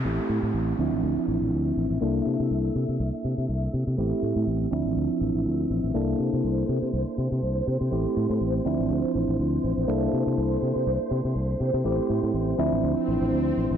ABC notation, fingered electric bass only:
X:1
M:4/4
L:1/16
Q:"Swing 16ths" 1/4=122
K:Cmix
V:1 name="Fingered electric bass" clef=bass
A,,, z A,, A,, A,,, z D,, A,,, D,, z A,,, A,,, D,, z A,,, A,,, | C,, z C, C, C,, z C, C, C,, z C, C, C,, z C, C, | A,,, z A,, A,, A,,, z D,, A,,, D,, z A,,, A,,, D,, z A,,, A,,, | C,, z C, C, C,, z C, C, C,, z C, C, C,, z C, C, |
A,,, z A,, A,, A,,, z D,, A,,, D,, z A,,, A,,, D,, z A,,, A,,, | C,, z C, C, C,, z C, C, C,, z C, C, C,, z C, C, | A,,, z A,, A,, A,,, z D,, A,,, D,, z A,,, A,,, D,, z A,,, A,,, |]